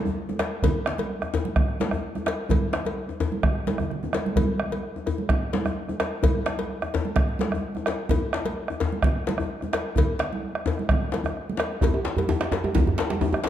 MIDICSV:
0, 0, Header, 1, 4, 480
1, 0, Start_track
1, 0, Tempo, 466200
1, 654, Time_signature, 4, 2, 24, 8
1, 13891, End_track
2, 0, Start_track
2, 0, Title_t, "Bombo"
2, 406, Note_on_c, 9, 37, 87
2, 509, Note_off_c, 9, 37, 0
2, 644, Note_on_c, 9, 37, 26
2, 644, Note_on_c, 9, 43, 81
2, 747, Note_off_c, 9, 37, 0
2, 747, Note_off_c, 9, 43, 0
2, 885, Note_on_c, 9, 37, 91
2, 988, Note_off_c, 9, 37, 0
2, 1126, Note_on_c, 9, 37, 26
2, 1229, Note_off_c, 9, 37, 0
2, 1256, Note_on_c, 9, 37, 68
2, 1359, Note_off_c, 9, 37, 0
2, 1379, Note_on_c, 9, 37, 28
2, 1482, Note_off_c, 9, 37, 0
2, 1606, Note_on_c, 9, 37, 90
2, 1606, Note_on_c, 9, 43, 99
2, 1709, Note_off_c, 9, 37, 0
2, 1709, Note_off_c, 9, 43, 0
2, 1734, Note_on_c, 9, 37, 31
2, 1837, Note_off_c, 9, 37, 0
2, 1970, Note_on_c, 9, 37, 69
2, 2073, Note_off_c, 9, 37, 0
2, 2222, Note_on_c, 9, 37, 29
2, 2325, Note_off_c, 9, 37, 0
2, 2334, Note_on_c, 9, 37, 84
2, 2437, Note_off_c, 9, 37, 0
2, 2578, Note_on_c, 9, 37, 27
2, 2578, Note_on_c, 9, 43, 93
2, 2681, Note_off_c, 9, 37, 0
2, 2681, Note_off_c, 9, 43, 0
2, 2817, Note_on_c, 9, 37, 85
2, 2920, Note_off_c, 9, 37, 0
2, 2955, Note_on_c, 9, 37, 26
2, 3058, Note_off_c, 9, 37, 0
2, 3298, Note_on_c, 9, 37, 30
2, 3401, Note_off_c, 9, 37, 0
2, 3534, Note_on_c, 9, 37, 90
2, 3534, Note_on_c, 9, 43, 88
2, 3637, Note_off_c, 9, 37, 0
2, 3637, Note_off_c, 9, 43, 0
2, 3657, Note_on_c, 9, 37, 28
2, 3760, Note_off_c, 9, 37, 0
2, 3893, Note_on_c, 9, 37, 59
2, 3996, Note_off_c, 9, 37, 0
2, 4020, Note_on_c, 9, 37, 27
2, 4123, Note_off_c, 9, 37, 0
2, 4252, Note_on_c, 9, 37, 80
2, 4355, Note_off_c, 9, 37, 0
2, 4488, Note_on_c, 9, 37, 26
2, 4488, Note_on_c, 9, 43, 82
2, 4591, Note_off_c, 9, 37, 0
2, 4591, Note_off_c, 9, 43, 0
2, 4732, Note_on_c, 9, 37, 78
2, 4834, Note_off_c, 9, 37, 0
2, 4976, Note_on_c, 9, 37, 26
2, 5079, Note_off_c, 9, 37, 0
2, 5213, Note_on_c, 9, 37, 26
2, 5316, Note_off_c, 9, 37, 0
2, 5448, Note_on_c, 9, 37, 90
2, 5448, Note_on_c, 9, 43, 86
2, 5550, Note_off_c, 9, 37, 0
2, 5550, Note_off_c, 9, 43, 0
2, 5585, Note_on_c, 9, 37, 28
2, 5688, Note_off_c, 9, 37, 0
2, 5824, Note_on_c, 9, 37, 66
2, 5927, Note_off_c, 9, 37, 0
2, 6059, Note_on_c, 9, 37, 29
2, 6162, Note_off_c, 9, 37, 0
2, 6176, Note_on_c, 9, 37, 90
2, 6279, Note_off_c, 9, 37, 0
2, 6416, Note_on_c, 9, 37, 27
2, 6416, Note_on_c, 9, 43, 90
2, 6519, Note_off_c, 9, 37, 0
2, 6519, Note_off_c, 9, 43, 0
2, 6655, Note_on_c, 9, 37, 90
2, 6758, Note_off_c, 9, 37, 0
2, 6902, Note_on_c, 9, 37, 29
2, 7005, Note_off_c, 9, 37, 0
2, 7024, Note_on_c, 9, 37, 73
2, 7127, Note_off_c, 9, 37, 0
2, 7147, Note_on_c, 9, 37, 27
2, 7250, Note_off_c, 9, 37, 0
2, 7375, Note_on_c, 9, 37, 92
2, 7375, Note_on_c, 9, 43, 97
2, 7478, Note_off_c, 9, 37, 0
2, 7478, Note_off_c, 9, 43, 0
2, 7742, Note_on_c, 9, 37, 65
2, 7845, Note_off_c, 9, 37, 0
2, 7987, Note_on_c, 9, 37, 26
2, 8090, Note_off_c, 9, 37, 0
2, 8092, Note_on_c, 9, 37, 80
2, 8195, Note_off_c, 9, 37, 0
2, 8332, Note_on_c, 9, 37, 24
2, 8332, Note_on_c, 9, 43, 81
2, 8435, Note_off_c, 9, 37, 0
2, 8435, Note_off_c, 9, 43, 0
2, 8576, Note_on_c, 9, 37, 80
2, 8679, Note_off_c, 9, 37, 0
2, 8823, Note_on_c, 9, 37, 24
2, 8926, Note_off_c, 9, 37, 0
2, 8939, Note_on_c, 9, 37, 65
2, 9042, Note_off_c, 9, 37, 0
2, 9062, Note_on_c, 9, 37, 28
2, 9165, Note_off_c, 9, 37, 0
2, 9292, Note_on_c, 9, 37, 93
2, 9292, Note_on_c, 9, 43, 93
2, 9395, Note_off_c, 9, 37, 0
2, 9395, Note_off_c, 9, 43, 0
2, 9432, Note_on_c, 9, 37, 29
2, 9535, Note_off_c, 9, 37, 0
2, 9656, Note_on_c, 9, 37, 70
2, 9759, Note_off_c, 9, 37, 0
2, 9895, Note_on_c, 9, 37, 31
2, 9998, Note_off_c, 9, 37, 0
2, 10022, Note_on_c, 9, 37, 88
2, 10125, Note_off_c, 9, 37, 0
2, 10253, Note_on_c, 9, 43, 95
2, 10356, Note_off_c, 9, 43, 0
2, 10502, Note_on_c, 9, 37, 89
2, 10605, Note_off_c, 9, 37, 0
2, 10865, Note_on_c, 9, 37, 75
2, 10968, Note_off_c, 9, 37, 0
2, 10975, Note_on_c, 9, 37, 31
2, 11078, Note_off_c, 9, 37, 0
2, 11098, Note_on_c, 9, 37, 33
2, 11201, Note_off_c, 9, 37, 0
2, 11212, Note_on_c, 9, 37, 102
2, 11212, Note_on_c, 9, 43, 94
2, 11315, Note_off_c, 9, 37, 0
2, 11315, Note_off_c, 9, 43, 0
2, 11346, Note_on_c, 9, 37, 29
2, 11449, Note_off_c, 9, 37, 0
2, 11465, Note_on_c, 9, 37, 25
2, 11568, Note_off_c, 9, 37, 0
2, 11592, Note_on_c, 9, 37, 66
2, 11695, Note_off_c, 9, 37, 0
2, 11706, Note_on_c, 9, 37, 28
2, 11809, Note_off_c, 9, 37, 0
2, 11939, Note_on_c, 9, 37, 92
2, 12042, Note_off_c, 9, 37, 0
2, 12063, Note_on_c, 9, 37, 27
2, 12163, Note_off_c, 9, 37, 0
2, 12163, Note_on_c, 9, 37, 31
2, 12163, Note_on_c, 9, 43, 105
2, 12266, Note_off_c, 9, 37, 0
2, 12266, Note_off_c, 9, 43, 0
2, 12775, Note_on_c, 9, 37, 89
2, 12878, Note_off_c, 9, 37, 0
2, 13139, Note_on_c, 9, 43, 99
2, 13242, Note_off_c, 9, 43, 0
2, 13268, Note_on_c, 9, 37, 30
2, 13371, Note_off_c, 9, 37, 0
2, 13498, Note_on_c, 9, 37, 29
2, 13601, Note_off_c, 9, 37, 0
2, 13737, Note_on_c, 9, 37, 79
2, 13840, Note_off_c, 9, 37, 0
2, 13891, End_track
3, 0, Start_track
3, 0, Title_t, "Djembe"
3, 58, Note_on_c, 9, 64, 53
3, 161, Note_off_c, 9, 64, 0
3, 298, Note_on_c, 9, 63, 51
3, 401, Note_off_c, 9, 63, 0
3, 403, Note_on_c, 9, 62, 76
3, 506, Note_off_c, 9, 62, 0
3, 656, Note_on_c, 9, 64, 66
3, 759, Note_off_c, 9, 64, 0
3, 899, Note_on_c, 9, 62, 73
3, 1002, Note_off_c, 9, 62, 0
3, 1261, Note_on_c, 9, 63, 52
3, 1364, Note_off_c, 9, 63, 0
3, 1376, Note_on_c, 9, 62, 71
3, 1376, Note_on_c, 9, 64, 67
3, 1479, Note_off_c, 9, 62, 0
3, 1479, Note_off_c, 9, 64, 0
3, 1862, Note_on_c, 9, 62, 76
3, 1965, Note_off_c, 9, 62, 0
3, 1983, Note_on_c, 9, 64, 53
3, 2086, Note_off_c, 9, 64, 0
3, 2225, Note_on_c, 9, 63, 53
3, 2328, Note_off_c, 9, 63, 0
3, 2329, Note_on_c, 9, 62, 66
3, 2432, Note_off_c, 9, 62, 0
3, 2566, Note_on_c, 9, 62, 22
3, 2566, Note_on_c, 9, 64, 68
3, 2669, Note_off_c, 9, 62, 0
3, 2669, Note_off_c, 9, 64, 0
3, 2811, Note_on_c, 9, 62, 76
3, 2914, Note_off_c, 9, 62, 0
3, 2941, Note_on_c, 9, 62, 23
3, 3044, Note_off_c, 9, 62, 0
3, 3065, Note_on_c, 9, 62, 24
3, 3168, Note_off_c, 9, 62, 0
3, 3181, Note_on_c, 9, 63, 53
3, 3284, Note_off_c, 9, 63, 0
3, 3298, Note_on_c, 9, 62, 61
3, 3298, Note_on_c, 9, 64, 70
3, 3401, Note_off_c, 9, 62, 0
3, 3401, Note_off_c, 9, 64, 0
3, 3429, Note_on_c, 9, 62, 21
3, 3532, Note_off_c, 9, 62, 0
3, 3780, Note_on_c, 9, 62, 68
3, 3883, Note_off_c, 9, 62, 0
3, 3910, Note_on_c, 9, 62, 19
3, 3910, Note_on_c, 9, 64, 53
3, 4013, Note_off_c, 9, 62, 0
3, 4013, Note_off_c, 9, 64, 0
3, 4157, Note_on_c, 9, 62, 19
3, 4157, Note_on_c, 9, 63, 50
3, 4260, Note_off_c, 9, 62, 0
3, 4260, Note_off_c, 9, 63, 0
3, 4266, Note_on_c, 9, 62, 70
3, 4369, Note_off_c, 9, 62, 0
3, 4495, Note_on_c, 9, 64, 62
3, 4598, Note_off_c, 9, 64, 0
3, 5108, Note_on_c, 9, 63, 49
3, 5211, Note_off_c, 9, 63, 0
3, 5223, Note_on_c, 9, 64, 66
3, 5326, Note_off_c, 9, 64, 0
3, 5699, Note_on_c, 9, 62, 74
3, 5802, Note_off_c, 9, 62, 0
3, 5817, Note_on_c, 9, 64, 55
3, 5920, Note_off_c, 9, 64, 0
3, 6068, Note_on_c, 9, 63, 53
3, 6171, Note_off_c, 9, 63, 0
3, 6177, Note_on_c, 9, 62, 70
3, 6280, Note_off_c, 9, 62, 0
3, 6411, Note_on_c, 9, 64, 68
3, 6514, Note_off_c, 9, 64, 0
3, 6651, Note_on_c, 9, 62, 71
3, 6754, Note_off_c, 9, 62, 0
3, 7027, Note_on_c, 9, 63, 55
3, 7130, Note_off_c, 9, 63, 0
3, 7151, Note_on_c, 9, 62, 75
3, 7151, Note_on_c, 9, 64, 67
3, 7254, Note_off_c, 9, 62, 0
3, 7254, Note_off_c, 9, 64, 0
3, 7631, Note_on_c, 9, 62, 71
3, 7734, Note_off_c, 9, 62, 0
3, 7759, Note_on_c, 9, 64, 49
3, 7862, Note_off_c, 9, 64, 0
3, 7996, Note_on_c, 9, 63, 56
3, 8099, Note_off_c, 9, 63, 0
3, 8113, Note_on_c, 9, 62, 74
3, 8216, Note_off_c, 9, 62, 0
3, 8351, Note_on_c, 9, 64, 73
3, 8454, Note_off_c, 9, 64, 0
3, 8588, Note_on_c, 9, 62, 75
3, 8691, Note_off_c, 9, 62, 0
3, 8959, Note_on_c, 9, 63, 61
3, 9062, Note_off_c, 9, 63, 0
3, 9072, Note_on_c, 9, 62, 74
3, 9072, Note_on_c, 9, 64, 69
3, 9175, Note_off_c, 9, 62, 0
3, 9175, Note_off_c, 9, 64, 0
3, 9545, Note_on_c, 9, 62, 67
3, 9647, Note_off_c, 9, 62, 0
3, 9671, Note_on_c, 9, 64, 50
3, 9774, Note_off_c, 9, 64, 0
3, 9908, Note_on_c, 9, 63, 57
3, 10011, Note_off_c, 9, 63, 0
3, 10018, Note_on_c, 9, 62, 66
3, 10121, Note_off_c, 9, 62, 0
3, 10253, Note_on_c, 9, 62, 20
3, 10253, Note_on_c, 9, 64, 72
3, 10356, Note_off_c, 9, 62, 0
3, 10356, Note_off_c, 9, 64, 0
3, 10494, Note_on_c, 9, 62, 68
3, 10597, Note_off_c, 9, 62, 0
3, 10973, Note_on_c, 9, 62, 68
3, 10973, Note_on_c, 9, 64, 69
3, 11076, Note_off_c, 9, 62, 0
3, 11076, Note_off_c, 9, 64, 0
3, 11340, Note_on_c, 9, 62, 24
3, 11443, Note_off_c, 9, 62, 0
3, 11449, Note_on_c, 9, 62, 73
3, 11552, Note_off_c, 9, 62, 0
3, 11572, Note_on_c, 9, 64, 53
3, 11675, Note_off_c, 9, 64, 0
3, 11678, Note_on_c, 9, 62, 25
3, 11781, Note_off_c, 9, 62, 0
3, 11916, Note_on_c, 9, 62, 74
3, 12019, Note_off_c, 9, 62, 0
3, 12167, Note_on_c, 9, 64, 82
3, 12173, Note_on_c, 9, 63, 108
3, 12270, Note_off_c, 9, 64, 0
3, 12276, Note_off_c, 9, 63, 0
3, 12294, Note_on_c, 9, 63, 80
3, 12397, Note_off_c, 9, 63, 0
3, 12404, Note_on_c, 9, 62, 73
3, 12407, Note_off_c, 9, 62, 0
3, 12407, Note_on_c, 9, 62, 83
3, 12510, Note_off_c, 9, 62, 0
3, 12527, Note_on_c, 9, 64, 77
3, 12629, Note_off_c, 9, 64, 0
3, 12651, Note_on_c, 9, 64, 80
3, 12652, Note_on_c, 9, 62, 81
3, 12754, Note_off_c, 9, 64, 0
3, 12755, Note_off_c, 9, 62, 0
3, 12774, Note_on_c, 9, 63, 68
3, 12775, Note_on_c, 9, 62, 83
3, 12877, Note_off_c, 9, 63, 0
3, 12878, Note_off_c, 9, 62, 0
3, 12887, Note_on_c, 9, 63, 107
3, 12892, Note_on_c, 9, 62, 80
3, 12990, Note_off_c, 9, 63, 0
3, 12995, Note_off_c, 9, 62, 0
3, 13016, Note_on_c, 9, 63, 84
3, 13119, Note_off_c, 9, 63, 0
3, 13124, Note_on_c, 9, 62, 77
3, 13127, Note_on_c, 9, 64, 90
3, 13227, Note_off_c, 9, 62, 0
3, 13230, Note_off_c, 9, 64, 0
3, 13246, Note_on_c, 9, 62, 28
3, 13255, Note_on_c, 9, 64, 80
3, 13349, Note_off_c, 9, 62, 0
3, 13358, Note_off_c, 9, 64, 0
3, 13364, Note_on_c, 9, 62, 84
3, 13372, Note_off_c, 9, 62, 0
3, 13372, Note_on_c, 9, 62, 87
3, 13475, Note_off_c, 9, 62, 0
3, 13490, Note_on_c, 9, 62, 79
3, 13593, Note_off_c, 9, 62, 0
3, 13601, Note_on_c, 9, 63, 106
3, 13607, Note_on_c, 9, 64, 88
3, 13704, Note_off_c, 9, 63, 0
3, 13710, Note_off_c, 9, 64, 0
3, 13721, Note_on_c, 9, 63, 81
3, 13726, Note_off_c, 9, 63, 0
3, 13726, Note_on_c, 9, 63, 59
3, 13829, Note_off_c, 9, 63, 0
3, 13834, Note_on_c, 9, 62, 87
3, 13839, Note_off_c, 9, 62, 0
3, 13839, Note_on_c, 9, 62, 80
3, 13891, Note_off_c, 9, 62, 0
3, 13891, End_track
4, 0, Start_track
4, 0, Title_t, "Drums"
4, 303, Note_on_c, 9, 63, 52
4, 406, Note_off_c, 9, 63, 0
4, 410, Note_on_c, 9, 56, 52
4, 513, Note_off_c, 9, 56, 0
4, 656, Note_on_c, 9, 56, 66
4, 658, Note_on_c, 9, 63, 73
4, 658, Note_on_c, 9, 64, 71
4, 759, Note_off_c, 9, 56, 0
4, 761, Note_off_c, 9, 63, 0
4, 761, Note_off_c, 9, 64, 0
4, 1011, Note_on_c, 9, 63, 54
4, 1021, Note_on_c, 9, 56, 54
4, 1114, Note_off_c, 9, 63, 0
4, 1124, Note_off_c, 9, 56, 0
4, 1258, Note_on_c, 9, 63, 19
4, 1361, Note_off_c, 9, 63, 0
4, 1385, Note_on_c, 9, 56, 47
4, 1487, Note_off_c, 9, 56, 0
4, 1494, Note_on_c, 9, 63, 56
4, 1597, Note_off_c, 9, 63, 0
4, 1612, Note_on_c, 9, 63, 22
4, 1612, Note_on_c, 9, 64, 65
4, 1715, Note_off_c, 9, 63, 0
4, 1715, Note_off_c, 9, 64, 0
4, 1742, Note_on_c, 9, 63, 19
4, 1845, Note_off_c, 9, 63, 0
4, 1855, Note_on_c, 9, 63, 65
4, 1864, Note_on_c, 9, 56, 45
4, 1958, Note_off_c, 9, 63, 0
4, 1967, Note_off_c, 9, 56, 0
4, 2216, Note_on_c, 9, 63, 45
4, 2319, Note_off_c, 9, 63, 0
4, 2348, Note_on_c, 9, 56, 51
4, 2451, Note_off_c, 9, 56, 0
4, 2575, Note_on_c, 9, 63, 63
4, 2575, Note_on_c, 9, 64, 65
4, 2585, Note_on_c, 9, 56, 57
4, 2678, Note_off_c, 9, 63, 0
4, 2678, Note_off_c, 9, 64, 0
4, 2688, Note_off_c, 9, 56, 0
4, 2937, Note_on_c, 9, 63, 47
4, 2949, Note_on_c, 9, 56, 45
4, 3039, Note_off_c, 9, 63, 0
4, 3052, Note_off_c, 9, 56, 0
4, 3302, Note_on_c, 9, 56, 40
4, 3405, Note_off_c, 9, 56, 0
4, 3418, Note_on_c, 9, 63, 54
4, 3521, Note_off_c, 9, 63, 0
4, 3533, Note_on_c, 9, 64, 69
4, 3636, Note_off_c, 9, 64, 0
4, 3778, Note_on_c, 9, 63, 65
4, 3786, Note_on_c, 9, 56, 42
4, 3881, Note_off_c, 9, 63, 0
4, 3889, Note_off_c, 9, 56, 0
4, 3907, Note_on_c, 9, 64, 44
4, 4010, Note_off_c, 9, 64, 0
4, 4029, Note_on_c, 9, 64, 48
4, 4132, Note_off_c, 9, 64, 0
4, 4147, Note_on_c, 9, 64, 47
4, 4250, Note_off_c, 9, 64, 0
4, 4255, Note_on_c, 9, 63, 59
4, 4269, Note_on_c, 9, 56, 47
4, 4358, Note_off_c, 9, 63, 0
4, 4372, Note_off_c, 9, 56, 0
4, 4389, Note_on_c, 9, 63, 59
4, 4492, Note_off_c, 9, 63, 0
4, 4496, Note_on_c, 9, 63, 69
4, 4496, Note_on_c, 9, 64, 65
4, 4498, Note_on_c, 9, 56, 62
4, 4599, Note_off_c, 9, 63, 0
4, 4599, Note_off_c, 9, 64, 0
4, 4600, Note_off_c, 9, 56, 0
4, 4860, Note_on_c, 9, 63, 46
4, 4862, Note_on_c, 9, 56, 45
4, 4963, Note_off_c, 9, 63, 0
4, 4965, Note_off_c, 9, 56, 0
4, 5218, Note_on_c, 9, 56, 45
4, 5321, Note_off_c, 9, 56, 0
4, 5336, Note_on_c, 9, 63, 54
4, 5439, Note_off_c, 9, 63, 0
4, 5454, Note_on_c, 9, 63, 21
4, 5454, Note_on_c, 9, 64, 69
4, 5557, Note_off_c, 9, 63, 0
4, 5557, Note_off_c, 9, 64, 0
4, 5583, Note_on_c, 9, 63, 20
4, 5686, Note_off_c, 9, 63, 0
4, 5695, Note_on_c, 9, 56, 43
4, 5699, Note_on_c, 9, 63, 60
4, 5798, Note_off_c, 9, 56, 0
4, 5802, Note_off_c, 9, 63, 0
4, 6067, Note_on_c, 9, 63, 44
4, 6170, Note_off_c, 9, 63, 0
4, 6179, Note_on_c, 9, 56, 47
4, 6282, Note_off_c, 9, 56, 0
4, 6420, Note_on_c, 9, 63, 61
4, 6420, Note_on_c, 9, 64, 58
4, 6421, Note_on_c, 9, 56, 66
4, 6523, Note_off_c, 9, 63, 0
4, 6523, Note_off_c, 9, 64, 0
4, 6524, Note_off_c, 9, 56, 0
4, 6782, Note_on_c, 9, 63, 44
4, 6783, Note_on_c, 9, 56, 50
4, 6885, Note_off_c, 9, 63, 0
4, 6886, Note_off_c, 9, 56, 0
4, 7020, Note_on_c, 9, 63, 17
4, 7123, Note_off_c, 9, 63, 0
4, 7145, Note_on_c, 9, 56, 47
4, 7248, Note_off_c, 9, 56, 0
4, 7258, Note_on_c, 9, 63, 48
4, 7361, Note_off_c, 9, 63, 0
4, 7370, Note_on_c, 9, 63, 22
4, 7370, Note_on_c, 9, 64, 69
4, 7473, Note_off_c, 9, 63, 0
4, 7473, Note_off_c, 9, 64, 0
4, 7504, Note_on_c, 9, 63, 20
4, 7607, Note_off_c, 9, 63, 0
4, 7610, Note_on_c, 9, 63, 67
4, 7627, Note_on_c, 9, 56, 45
4, 7713, Note_off_c, 9, 63, 0
4, 7730, Note_off_c, 9, 56, 0
4, 7976, Note_on_c, 9, 63, 44
4, 8079, Note_off_c, 9, 63, 0
4, 8102, Note_on_c, 9, 56, 49
4, 8204, Note_off_c, 9, 56, 0
4, 8333, Note_on_c, 9, 63, 67
4, 8333, Note_on_c, 9, 64, 67
4, 8348, Note_on_c, 9, 56, 61
4, 8436, Note_off_c, 9, 63, 0
4, 8436, Note_off_c, 9, 64, 0
4, 8451, Note_off_c, 9, 56, 0
4, 8702, Note_on_c, 9, 63, 50
4, 8706, Note_on_c, 9, 56, 51
4, 8805, Note_off_c, 9, 63, 0
4, 8809, Note_off_c, 9, 56, 0
4, 9064, Note_on_c, 9, 56, 46
4, 9167, Note_off_c, 9, 56, 0
4, 9188, Note_on_c, 9, 63, 49
4, 9291, Note_off_c, 9, 63, 0
4, 9310, Note_on_c, 9, 63, 21
4, 9310, Note_on_c, 9, 64, 74
4, 9413, Note_off_c, 9, 63, 0
4, 9413, Note_off_c, 9, 64, 0
4, 9449, Note_on_c, 9, 63, 20
4, 9546, Note_on_c, 9, 56, 44
4, 9552, Note_off_c, 9, 63, 0
4, 9562, Note_on_c, 9, 63, 63
4, 9649, Note_off_c, 9, 56, 0
4, 9665, Note_off_c, 9, 63, 0
4, 9921, Note_on_c, 9, 63, 42
4, 10023, Note_off_c, 9, 63, 0
4, 10029, Note_on_c, 9, 56, 50
4, 10132, Note_off_c, 9, 56, 0
4, 10269, Note_on_c, 9, 63, 67
4, 10269, Note_on_c, 9, 64, 63
4, 10277, Note_on_c, 9, 56, 66
4, 10372, Note_off_c, 9, 63, 0
4, 10372, Note_off_c, 9, 64, 0
4, 10380, Note_off_c, 9, 56, 0
4, 10509, Note_on_c, 9, 63, 21
4, 10612, Note_off_c, 9, 63, 0
4, 10632, Note_on_c, 9, 63, 49
4, 10735, Note_off_c, 9, 63, 0
4, 10991, Note_on_c, 9, 56, 43
4, 11094, Note_off_c, 9, 56, 0
4, 11111, Note_on_c, 9, 63, 56
4, 11214, Note_off_c, 9, 63, 0
4, 11233, Note_on_c, 9, 64, 71
4, 11335, Note_off_c, 9, 64, 0
4, 11365, Note_on_c, 9, 63, 21
4, 11466, Note_on_c, 9, 56, 44
4, 11468, Note_off_c, 9, 63, 0
4, 11470, Note_on_c, 9, 63, 67
4, 11569, Note_off_c, 9, 56, 0
4, 11573, Note_off_c, 9, 63, 0
4, 11835, Note_on_c, 9, 63, 51
4, 11938, Note_off_c, 9, 63, 0
4, 11944, Note_on_c, 9, 56, 50
4, 12047, Note_off_c, 9, 56, 0
4, 12075, Note_on_c, 9, 63, 23
4, 12178, Note_off_c, 9, 63, 0
4, 12182, Note_on_c, 9, 64, 68
4, 12190, Note_on_c, 9, 56, 62
4, 12285, Note_off_c, 9, 64, 0
4, 12293, Note_off_c, 9, 56, 0
4, 12544, Note_on_c, 9, 56, 49
4, 12549, Note_on_c, 9, 63, 54
4, 12647, Note_off_c, 9, 56, 0
4, 12652, Note_off_c, 9, 63, 0
4, 12788, Note_on_c, 9, 63, 18
4, 12891, Note_off_c, 9, 63, 0
4, 12903, Note_on_c, 9, 56, 52
4, 13006, Note_off_c, 9, 56, 0
4, 13019, Note_on_c, 9, 63, 54
4, 13122, Note_off_c, 9, 63, 0
4, 13130, Note_on_c, 9, 64, 81
4, 13233, Note_off_c, 9, 64, 0
4, 13379, Note_on_c, 9, 63, 21
4, 13387, Note_on_c, 9, 56, 50
4, 13482, Note_off_c, 9, 63, 0
4, 13490, Note_off_c, 9, 56, 0
4, 13500, Note_on_c, 9, 63, 63
4, 13603, Note_off_c, 9, 63, 0
4, 13891, End_track
0, 0, End_of_file